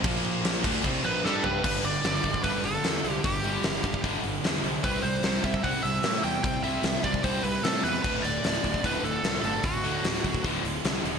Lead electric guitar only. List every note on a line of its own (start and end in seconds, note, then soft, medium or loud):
1.05 1.25 B4 medium
1.25 1.45 A4 medium
1.44 1.63 B4 medium
1.64 1.84 B4 medium
1.84 2.43 D5 medium
2.44 2.64 B4 medium
2.64 3.11 A4 loud
3.11 3.24 G4 loud
3.25 4.00 G4 medium
4.84 5.02 B4 medium
5.03 5.45 C5 medium
5.44 5.63 E5 loud
5.63 5.83 F#5 loud
5.83 6.24 E5 loud
6.24 6.43 G5 medium
6.44 6.63 G5 medium
6.63 7.05 E5 medium
7.04 7.24 D5 medium
7.24 7.43 C5 medium
7.43 7.63 B4 medium
7.63 7.83 A4 medium
7.83 8.01 B4 medium
8.02 8.24 B4 medium
8.22 8.85 D5 medium
8.85 9.04 B4 medium
9.04 9.44 A4 medium
9.45 9.65 A4 medium
9.65 10.41 F#4 medium